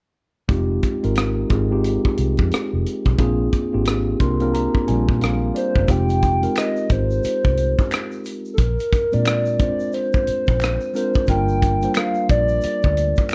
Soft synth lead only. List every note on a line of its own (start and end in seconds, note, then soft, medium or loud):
5.57 5.92 C5 medium
5.91 6.57 G5 loud
6.58 6.94 D#5 medium
6.92 8.26 C5 loud
8.54 8.61 A4 medium
8.59 9.15 A#4 medium
9.14 9.60 D5 medium
9.60 9.95 D5 medium
9.94 10.95 C5 loud
10.96 11.26 C5 medium
11.29 11.92 G5 loud
11.97 12.27 F5 loud
12.30 13.35 D5 loud